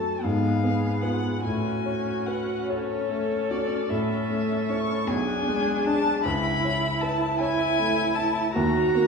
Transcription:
Already playing: F#2 A3 C#4 F#4 A4 A5
0.22 G#2 B3 G#4 F5
0.64 B3
1.02 F4 B4 F#5
1.43 A2 C#4 F#4 G#5
1.86 C#5
2.26 B4 F#5
2.69 A4 C#5
3.09 A3
3.50 F#4 D5
3.89 A2 C#4 A4 E5
4.30 A3
4.69 E4 C#5 C#6
5.07 B1 D4 G#4 G#5
5.47 G#3
5.84 D4 D5 A5
6.24 C#2 E4 B5
6.65 C#5
7.01 B4 A5
7.39 E4 C#5 G#5
7.79 A3
8.15 E4 A5
8.53 D#2 F#4 A#5
8.95 A#3

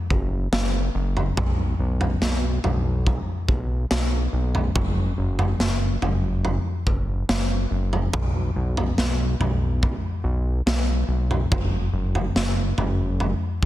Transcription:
0.10 F#1, kick
0.52 F#1, snare
0.95 F#1
1.17 floor tom
1.37 B1, kick, floor tom
1.79 B1
2.01 floor tom
2.22 B1, snare
2.64 B1, floor tom
3.07 kick, floor tom
3.48 B1, kick
3.91 B1, snare
4.33 B1
4.55 floor tom
4.76 F#1, kick, floor tom
5.18 F#1
5.39 floor tom
5.60 F#1, snare
6.02 F#1, floor tom
6.45 floor tom
6.87 F#1, kick
7.29 F#1, snare
7.71 F#1
7.93 floor tom
8.13 B1, kick, floor tom
8.56 B1
8.77 floor tom
8.98 B1, snare
9.40 B1, floor tom
9.83 kick, floor tom
10.24 B1
10.66 B1, snare
11.08 B1
11.31 floor tom
11.52 F#1, kick, floor tom
11.93 F#1
12.15 floor tom
12.36 F#1, snare
12.78 F#1, floor tom
13.20 floor tom
13.62 F#1, kick

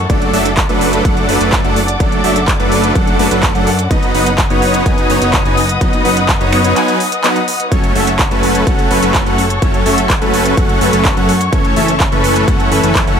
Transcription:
Already playing: A4 F#5
0.10 F#1 F#3 A3 D4 A4 D5 D6, kick, closed hi-hat
0.22 closed hi-hat
0.34 F#1 F#3 A3 D4 A4 E5, open hi-hat
0.45 closed hi-hat
0.57 kick, clap, closed hi-hat
0.69 F#1 F#3 A3 D4 A4 B4, closed hi-hat
0.81 open hi-hat
0.93 closed hi-hat
1.05 F#3 A3 D4 A4 F#5, kick, closed hi-hat
1.17 closed hi-hat
1.29 F#1 F#3 A3 D4 A4 B4, open hi-hat
1.41 F#1 F#3 A3 D4 A4 B4, closed hi-hat
1.53 kick, clap, closed hi-hat
1.64 F#1 F#3 A3 D4 A4 F#5, closed hi-hat
1.76 open hi-hat
1.88 closed hi-hat
2.00 F#3 A3 D4 A4 D5, kick, closed hi-hat
2.12 closed hi-hat
2.24 F#1 F#3 A3 D4 A4 E5, open hi-hat
2.36 closed hi-hat
2.48 kick, clap, closed hi-hat
2.60 F#1 F#3 A3 D4 A4 B4, closed hi-hat
2.72 open hi-hat
2.84 closed hi-hat
2.95 F#1 F#3 A3 D4 A4 F#5, kick, closed hi-hat
3.07 closed hi-hat
3.19 F#1 F#3 A3 D4 A4 B4, open hi-hat
3.31 F#1 F#3 A3 D4 A4 B4, closed hi-hat
3.43 kick, clap, closed hi-hat
3.55 F#2 F#3 A3 D4 A4 F#5, closed hi-hat
3.67 open hi-hat
3.79 closed hi-hat
3.91 F#1 F#3 B3 D#4 B4 D#5 D#6, kick, closed hi-hat
4.03 closed hi-hat
4.14 F#1 F#3 B3 D#4 B4 F#5, open hi-hat
4.26 closed hi-hat
4.38 kick, clap, closed hi-hat
4.50 F#1 F#3 B3 D#4 B4 C#5, closed hi-hat
4.62 open hi-hat
4.74 closed hi-hat
4.86 F#3 B3 D#4 B4 G#5, kick, closed hi-hat
4.98 closed hi-hat
5.10 F#1 F#3 B3 D#4 B4 C#5, open hi-hat
5.22 F#1 F#3 B3 D#4 B4 C#5, closed hi-hat
5.33 kick, clap, closed hi-hat
5.45 F#1 F#3 B3 D#4 B4 G#5, closed hi-hat
5.57 open hi-hat
5.69 closed hi-hat
5.81 F#1 F#3 B3 D#4 B4 D#5, kick, closed hi-hat
5.93 closed hi-hat
6.05 F#1 F#3 B3 D#4 B4 F#5, open hi-hat
6.17 closed hi-hat
6.29 kick, clap, closed hi-hat
6.41 F#1 F#3 B3 D#4 B4 C#5, closed hi-hat
6.53 finger snap, open hi-hat
6.64 closed hi-hat
6.76 F#3 B3 D#4 B4 G#5, clap, closed hi-hat
6.88 closed hi-hat
7.00 open hi-hat
7.12 closed hi-hat
7.24 F#3 B3 D#4 B4 F#5, clap, closed hi-hat
7.36 closed hi-hat
7.48 open hi-hat
7.60 closed hi-hat
7.72 F#1 F#3 A3 C#4 A4 C#5 C#6, kick, closed hi-hat
7.84 closed hi-hat
7.95 F#1 F#3 A3 C#4 A4 E5, open hi-hat
8.07 closed hi-hat
8.19 kick, clap, closed hi-hat
8.31 F#1 F#3 A3 C#4 A4 B4, closed hi-hat
8.43 open hi-hat
8.55 closed hi-hat
8.67 F#1 F#3 A3 C#4 A4 F#5, kick, closed hi-hat
8.79 closed hi-hat
8.91 F#1 F#3 A3 C#4 A4 B4, open hi-hat
9.03 F#1 F#3 A3 C#4 A4 B4, closed hi-hat
9.14 kick, clap, closed hi-hat
9.26 F#1 F#3 A3 C#4 A4 F#5, closed hi-hat
9.38 open hi-hat
9.50 closed hi-hat
9.62 F#1 F#3 A3 C#4 A4 C#5, kick, closed hi-hat
9.74 closed hi-hat
9.86 F#1 F#3 A3 C#4 A4 E5, open hi-hat
9.98 closed hi-hat
10.10 kick, clap, closed hi-hat
10.22 F#1 F#3 A3 C#4 A4 B4, closed hi-hat
10.34 open hi-hat
10.46 closed hi-hat
10.57 F#3 A3 C#4 A4 F#5, kick, closed hi-hat
10.69 closed hi-hat
10.81 F#1 F#3 A3 C#4 A4 B4, open hi-hat
10.93 F#1 F#3 A3 C#4 A4 B4, closed hi-hat
11.05 kick, clap, closed hi-hat
11.17 F#2 F#3 A3 C#4 A4 F#5, closed hi-hat
11.29 open hi-hat
11.41 closed hi-hat
11.53 F#1 E3 A3 C#4 A4 C#5 E5, kick, closed hi-hat
11.65 closed hi-hat
11.76 F#1 E3 A3 C#4 A4 E5, open hi-hat
11.88 closed hi-hat
12.00 kick, clap, closed hi-hat
12.12 F#1 E3 A3 C#4 A4 B4, closed hi-hat
12.24 open hi-hat
12.36 closed hi-hat
12.48 E3 A3 C#4 A4 F#5, kick, closed hi-hat
12.60 closed hi-hat
12.72 F#1 E3 A3 C#4 A4 B4, open hi-hat
12.84 F#1 E3 A3 C#4 A4 B4, closed hi-hat
12.95 kick, clap, closed hi-hat
13.07 F#1 E3 A3 C#4 A4 F#5, closed hi-hat

